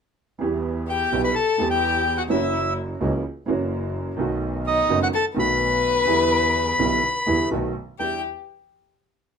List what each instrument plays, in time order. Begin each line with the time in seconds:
0.39 double bass E2, upright piano E2 E3 G3 B3
0.43 upright piano G4
0.88 violin G4, bandoneon G5
1.12 double bass B1, upright piano B1 B2 E3 G3 B3 G4
1.24 violin B4, bandoneon B5
1.35 violin A4, bandoneon A5
1.58 double bass E2, upright piano E2 E3 G3 B3 G4
1.70 violin G4, bandoneon G5
2.18 violin F#4, bandoneon F#5
2.28 double bass F#1, upright piano F#2 E3 F#3 A#3 C#4, violin E4, bandoneon E5
2.32 upright piano F#4
3.00 double bass C#2, upright piano C#2 C#3 E3 A#3 C#4 F#4
3.46 double bass F#1, upright piano F#2 E3 F#3 A#3 C#4
3.50 upright piano F#4
4.17 double bass B1, upright piano B1 B2 D#3 A3 B3
4.21 upright piano F#4
4.67 violin D#4, bandoneon D#5
4.88 double bass F#1, upright piano F#1 F#2 D#3 A3 B3 F#4
5.02 violin F#4, bandoneon F#5
5.13 violin A4, bandoneon A5
5.34 upright piano B1 B2 D#3 A3 B3, double bass B1, violin B4
5.39 upright piano F#4, bandoneon B5
6.05 double bass E2, upright piano E2 D3 E3 G3 B3 E4
6.78 double bass B1, upright piano B1 B2 D3 G3 B3 E4
7.27 upright piano E2 D3 E3 G3 B3 E4, double bass E2
7.51 double bass B1, upright piano B1 B2 D#3 A3 B3 F#4
7.99 upright piano E2 G3 D4 E4, double bass E2, violin G4, bandoneon G5